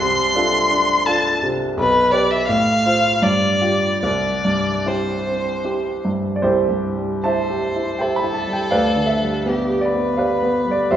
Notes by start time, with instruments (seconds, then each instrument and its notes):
Already playing: grand piano C2, violin C6
0.00 grand piano C3
0.35 grand piano D4 F4 A4
0.70 grand piano D4
1.06 grand piano D4 F4 A4, violin A5
1.43 grand piano C3
1.77 grand piano B1, violin B4
2.11 grand piano G4 B4, violin D5
2.30 violin E5
2.47 grand piano A2, violin F5
2.86 grand piano F4 C5
3.22 grand piano G2, violin D5
3.61 grand piano F4 G4
4.02 grand piano C2, violin D5
4.45 grand piano G2
4.86 grand piano C4 E4 G4, violin C5
5.27 grand piano C4
5.64 grand piano C4 E4 G4
6.05 grand piano G2
6.36 grand piano D5
6.42 grand piano C2 E4 G4 C5
6.69 grand piano G2
6.97 grand piano G3
7.24 grand piano E4 C5 E5 A5, violin C5
7.50 grand piano G4
7.76 grand piano E4
7.99 grand piano G4 C5 E5 G5, violin A4
8.16 grand piano B5
8.24 grand piano E4
8.34 grand piano A5
8.47 grand piano G3
8.53 grand piano G5
8.71 grand piano D2 B4 D5 F5
8.96 grand piano D3
9.06 grand piano E5
9.21 grand piano G3
9.46 grand piano B3, violin G4
9.70 grand piano G4
9.81 violin B4, grand piano D5
9.94 grand piano B3
10.17 grand piano G4 B4 D5 F5
10.42 grand piano B3
10.66 grand piano G3
10.71 grand piano D5
10.91 grand piano C2 G4 C5 E5, violin C5